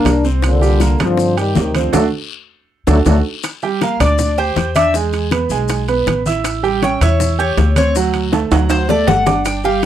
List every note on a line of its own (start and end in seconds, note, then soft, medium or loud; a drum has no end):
0.00 0.18 A#3 medium
0.00 0.26 A#3 medium
0.00 0.26 D4 loud
0.00 0.18 A#4 medium
0.05 0.94 C2 medium
0.05 high bongo soft
0.05 low bongo medium
0.05 high conga soft
0.05 high timbale loud
0.05 low timbale medium
0.05 short guiro medium
0.05 maracas medium
0.24 0.55 C4 medium
0.24 0.55 C5 medium
0.24 high bongo soft
0.24 high conga soft
0.24 short guiro medium
0.24 maracas soft
0.42 0.97 A#2 medium
0.42 0.97 D3 medium
0.42 high bongo medium
0.42 high conga soft
0.42 high timbale medium
0.42 long guiro medium
0.42 maracas medium
0.61 0.77 G3 medium
0.61 0.77 G4 medium
0.61 high bongo soft
0.61 high conga soft
0.61 maracas medium
0.80 0.97 A#3 medium
0.80 0.97 A#4 medium
0.80 high bongo medium
0.80 high conga medium
0.80 high timbale medium
0.80 low timbale medium
0.80 short guiro medium
0.80 maracas medium
0.99 1.52 G2 medium
0.99 1.36 F3 medium
0.99 1.31 C4 medium
0.99 1.31 C5 medium
0.99 high bongo soft
0.99 high conga loud
0.99 high timbale loud
0.99 short guiro medium
0.99 maracas soft
1.03 1.37 D3 medium
1.17 high bongo medium
1.17 high conga soft
1.17 long guiro medium
1.17 maracas medium
1.37 1.56 D#3 medium
1.37 1.56 G3 medium
1.37 1.68 G4 medium
1.37 1.68 G5 medium
1.37 high conga soft
1.37 high timbale medium
1.37 maracas medium
1.55 1.91 D2 medium
1.55 1.75 C3 medium
1.55 1.75 D#3 medium
1.55 high bongo soft
1.55 low bongo medium
1.55 high conga medium
1.55 low timbale medium
1.55 short guiro medium
1.55 maracas medium
1.75 1.93 D3 medium
1.75 1.95 F3 medium
1.75 1.91 C4 medium
1.75 1.91 C5 medium
1.75 high bongo soft
1.75 high conga medium
1.75 high timbale medium
1.75 short guiro medium
1.75 maracas soft
1.93 2.08 D2 medium
1.93 2.03 D3 medium
1.93 2.03 F#3 medium
1.93 2.03 A3 medium
1.93 2.05 D4 loud
1.93 2.05 F#4 medium
1.93 2.05 A4 medium
1.93 high bongo medium
1.93 high conga medium
1.93 high timbale medium
1.93 long guiro medium
1.93 maracas medium
2.87 3.02 D2 medium
2.87 2.98 D3 medium
2.87 2.98 F#3 medium
2.87 2.98 A3 medium
2.87 3.00 D4 medium
2.87 3.00 F#4 medium
2.87 3.00 A4 medium
2.87 high bongo medium
2.87 high conga medium
2.87 high timbale medium
2.87 long guiro loud
2.87 maracas medium
3.06 3.20 D2 medium
3.06 3.17 D3 medium
3.06 3.17 F#3 medium
3.06 3.17 A3 medium
3.06 3.18 D4 medium
3.06 3.19 F#4 medium
3.06 3.18 A4 medium
3.06 high bongo medium
3.06 high conga medium
3.06 high timbale loud
3.06 long guiro medium
3.06 maracas medium
3.43 high bongo medium
3.43 high conga soft
3.43 high timbale medium
3.43 long guiro medium
3.43 maracas medium
3.62 3.78 G3 medium
3.62 3.79 G4 medium
3.62 3.79 G5 medium
3.62 high conga soft
3.62 maracas soft
3.81 3.98 A#3 medium
3.81 3.98 A#4 medium
3.81 4.00 F5 medium
3.81 3.98 A#5 medium
3.81 high bongo medium
3.81 high conga medium
3.81 high timbale medium
3.81 short guiro medium
3.81 maracas soft
4.00 4.53 D2 medium
4.00 4.32 D4 medium
4.00 4.37 D5 medium
4.00 4.32 D5 medium
4.00 4.32 D6 medium
4.00 high conga soft
4.00 low conga medium
4.00 high timbale medium
4.00 short guiro medium
4.00 maracas medium
4.18 high bongo medium
4.18 high conga soft
4.18 low conga medium
4.18 long guiro medium
4.18 maracas medium
4.37 4.69 G4 medium
4.37 4.75 C5 medium
4.37 4.69 G5 medium
4.37 4.70 G6 medium
4.37 high conga soft
4.37 maracas soft
4.56 5.45 E2 medium
4.56 high bongo medium
4.56 low bongo medium
4.56 high conga soft
4.56 high timbale medium
4.56 short guiro medium
4.56 maracas soft
4.75 4.92 D4 medium
4.75 4.91 D5 medium
4.75 4.94 E5 medium
4.75 4.92 D6 medium
4.75 high conga medium
4.75 high timbale medium
4.75 short guiro medium
4.75 maracas medium
4.94 5.26 G#3 medium
4.94 5.26 G#4 medium
4.94 5.26 G#5 medium
4.94 high bongo medium
4.94 high conga soft
4.94 long guiro medium
4.94 maracas medium
5.13 high bongo soft
5.13 high conga soft
5.13 high timbale medium
5.13 maracas soft
5.31 5.48 B3 medium
5.31 5.48 B4 medium
5.31 5.48 B5 medium
5.31 high bongo medium
5.31 high conga medium
5.31 high timbale medium
5.31 short guiro medium
5.31 maracas soft
5.50 6.03 B1 medium
5.50 5.82 G#3 medium
5.50 5.82 G#4 medium
5.50 5.82 G#5 medium
5.50 high bongo soft
5.50 high conga soft
5.50 short guiro medium
5.50 maracas medium
5.68 high bongo medium
5.68 high conga soft
5.68 high timbale medium
5.68 long guiro medium
5.68 maracas medium
5.88 6.19 B3 medium
5.88 6.19 B4 medium
5.88 6.20 B5 medium
5.88 high bongo soft
5.88 high conga soft
5.88 high timbale medium
5.88 maracas soft
6.06 6.95 A1 medium
6.06 high bongo medium
6.06 low bongo medium
6.06 high conga medium
6.06 high timbale medium
6.06 short guiro medium
6.06 maracas soft
6.26 6.57 E4 medium
6.26 6.57 E5 medium
6.26 6.58 E6 medium
6.26 high conga medium
6.26 short guiro medium
6.26 maracas medium
6.44 high bongo medium
6.44 high conga soft
6.44 high timbale medium
6.44 long guiro medium
6.44 maracas medium
6.63 6.79 G3 medium
6.63 6.79 G4 medium
6.63 6.79 G5 medium
6.63 high conga soft
6.63 maracas soft
6.82 6.98 C#4 medium
6.82 6.98 C#5 medium
6.82 7.02 G5 medium
6.82 6.98 C#6 medium
6.82 high bongo medium
6.82 high conga medium
6.82 high timbale medium
6.82 short guiro medium
6.82 maracas soft
7.01 7.54 E2 medium
7.01 7.32 E4 medium
7.01 7.38 C#5 medium
7.01 7.32 E5 medium
7.01 7.33 E6 medium
7.01 high conga soft
7.01 low conga medium
7.01 high timbale medium
7.01 short guiro medium
7.01 maracas medium
7.20 high bongo medium
7.20 high conga soft
7.20 low conga medium
7.20 long guiro medium
7.20 maracas medium
7.39 7.70 G4 medium
7.39 7.76 C#5 medium
7.39 7.70 G5 medium
7.39 7.70 G6 medium
7.39 high conga soft
7.39 maracas soft
7.57 8.46 D2 medium
7.57 high bongo medium
7.57 low bongo medium
7.57 high conga soft
7.57 high timbale medium
7.57 low timbale medium
7.57 short guiro medium
7.57 maracas soft
7.76 7.92 C4 medium
7.76 7.92 C5 medium
7.76 7.95 C#5 medium
7.76 7.93 C6 medium
7.76 high conga medium
7.76 high timbale medium
7.76 short guiro medium
7.76 maracas medium
7.95 8.27 F#3 medium
7.95 8.27 F#4 medium
7.95 8.27 F#5 medium
7.95 high bongo medium
7.95 high conga soft
7.95 long guiro medium
7.95 maracas loud
8.14 high bongo soft
8.14 high conga soft
8.14 high timbale medium
8.14 maracas soft
8.32 8.48 A3 medium
8.32 8.49 A4 medium
8.32 8.49 A5 medium
8.32 high bongo medium
8.32 high conga medium
8.32 high timbale medium
8.32 short guiro medium
8.32 maracas soft
8.51 9.04 D2 medium
8.51 8.83 F#3 medium
8.51 8.83 F#4 medium
8.51 8.83 F#5 medium
8.51 high bongo medium
8.51 high conga soft
8.51 high timbale loud
8.51 short guiro medium
8.51 maracas medium
8.69 8.89 C5 loud
8.69 high conga soft
8.69 high timbale medium
8.69 long guiro medium
8.69 maracas medium
8.89 9.20 A3 medium
8.89 9.20 A4 medium
8.89 9.08 D5 medium
8.89 9.21 A5 medium
8.89 low bongo medium
8.89 high conga soft
8.89 low timbale medium
8.89 maracas soft
9.07 9.86 G1 medium
9.07 9.44 F#5 medium
9.07 low bongo medium
9.07 high conga medium
9.07 low timbale loud
9.07 short guiro medium
9.07 maracas soft
9.26 9.57 D4 medium
9.26 9.58 D5 medium
9.26 9.58 D6 medium
9.26 low bongo medium
9.26 high conga medium
9.26 low timbale medium
9.26 short guiro medium
9.26 maracas medium
9.45 9.64 G5 medium
9.45 high bongo medium
9.45 high conga soft
9.45 high timbale medium
9.45 long guiro medium
9.45 maracas medium
9.63 9.80 G3 medium
9.63 9.80 G4 medium
9.63 9.83 F5 medium
9.63 9.80 G5 medium
9.63 high conga soft
9.63 maracas soft